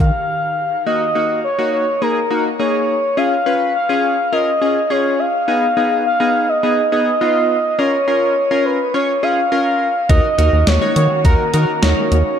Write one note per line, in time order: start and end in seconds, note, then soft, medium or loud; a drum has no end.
0.00 0.11 D#3 loud
0.00 0.84 D#3 medium
0.00 0.84 D#4 medium
0.00 0.84 G4 medium
0.00 0.84 A#4 medium
0.00 0.82 F5 loud
0.00 kick loud
0.00 closed hi-hat medium
0.86 1.04 A#3 medium
0.86 1.04 D#4 medium
0.86 1.04 F#4 medium
0.86 1.40 D#5 loud
1.15 1.42 A#3 medium
1.15 1.42 D#4 medium
1.15 1.42 F#4 medium
1.44 1.71 C#5 loud
1.59 1.85 A#3 medium
1.59 1.85 D#4 medium
1.59 1.85 F#4 medium
1.73 2.03 C#5 medium
2.02 2.20 A#3 medium
2.02 2.20 D#4 medium
2.02 2.20 G#4 medium
2.02 2.30 A#4 loud
2.30 2.49 A#3 medium
2.30 2.49 D#4 medium
2.30 2.48 F#4 medium
2.30 2.44 A#4 medium
2.59 2.95 A#3 medium
2.59 2.95 D#4 medium
2.59 2.95 G#4 medium
2.59 3.19 C#5 loud
3.17 3.35 C#4 medium
3.17 3.35 F4 medium
3.17 3.35 G#4 medium
3.17 3.74 F5 loud
3.46 3.73 C#4 medium
3.46 3.73 F4 medium
3.46 3.73 B4 medium
3.75 4.34 F5 loud
3.89 4.16 C#4 medium
3.89 4.16 F4 medium
3.89 4.16 G#4 medium
4.33 4.50 C#4 medium
4.33 4.50 F4 medium
4.33 4.50 A#4 medium
4.33 4.92 D#5 loud
4.61 4.79 C#4 medium
4.61 4.79 F4 medium
4.61 4.79 G#4 medium
4.90 5.26 C#4 medium
4.90 5.26 F4 medium
4.90 5.26 G#4 medium
4.90 5.21 C#5 loud
5.19 6.05 F5 loud
5.48 5.66 B3 medium
5.48 5.66 D#4 medium
5.48 5.66 G#4 medium
5.77 6.04 B3 medium
5.77 6.04 D#4 medium
5.77 6.04 G#4 medium
6.06 6.50 F5 loud
6.20 6.47 B3 medium
6.20 6.47 D#4 medium
6.20 6.47 G#4 medium
6.49 6.91 D#5 loud
6.63 6.81 B3 medium
6.63 6.81 D#4 medium
6.63 6.81 G#4 medium
6.92 7.10 B3 medium
6.92 7.10 D#4 medium
6.92 7.10 G#4 medium
6.92 7.80 D#5 loud
7.21 7.57 B3 medium
7.21 7.57 D#4 medium
7.21 7.57 F4 medium
7.79 7.97 C#4 medium
7.79 7.97 F4 medium
7.79 7.97 A#4 medium
7.79 8.67 C#5 loud
8.08 8.34 C#4 medium
8.08 8.34 F4 medium
8.08 8.34 A#4 medium
8.51 8.78 C#4 medium
8.51 8.78 F4 medium
8.51 8.78 A#4 medium
8.65 8.96 B4 loud
8.94 9.12 C#4 medium
8.94 9.12 F4 medium
8.94 9.24 C#5 loud
8.94 9.12 C#5 medium
9.23 9.41 C#4 medium
9.23 9.41 F4 medium
9.23 9.41 G#4 medium
9.23 10.09 F5 loud
9.52 9.88 C#4 medium
9.52 9.88 F4 medium
9.52 9.88 A#4 medium
10.09 10.21 D#2 loud
10.09 12.38 D#3 medium
10.09 12.38 A#3 medium
10.09 12.39 C#4 medium
10.09 10.27 D#4 medium
10.09 10.27 F#4 medium
10.09 12.38 F#4 medium
10.09 10.27 A#4 medium
10.09 10.69 D#5 loud
10.09 kick loud
10.09 closed hi-hat medium
10.38 10.50 D#2 loud
10.38 10.65 D#4 medium
10.38 10.65 F#4 medium
10.38 10.65 A#4 medium
10.38 closed hi-hat medium
10.53 10.64 D#2 loud
10.67 10.79 D#2 loud
10.67 10.96 C#5 loud
10.67 snare loud
10.67 closed hi-hat medium
10.82 11.08 D#4 medium
10.82 11.08 F#4 medium
10.82 11.08 C#5 medium
10.96 11.08 D#3 loud
10.96 11.23 C#5 loud
10.96 closed hi-hat medium
11.25 11.36 D#2 loud
11.25 11.43 D#4 medium
11.25 11.43 F#4 medium
11.25 11.43 A#4 medium
11.25 11.52 A#4 loud
11.25 kick loud
11.25 closed hi-hat medium
11.54 11.65 D#3 loud
11.54 11.72 D#4 medium
11.54 11.72 F#4 medium
11.54 11.72 A#4 medium
11.54 11.81 A#4 medium
11.54 closed hi-hat medium
11.82 11.94 D#2 loud
11.82 12.18 D#4 medium
11.82 12.18 F#4 medium
11.82 12.18 A#4 medium
11.82 12.39 C#5 loud
11.82 snare loud
11.82 closed hi-hat medium
12.11 12.23 D#2 loud
12.11 closed hi-hat medium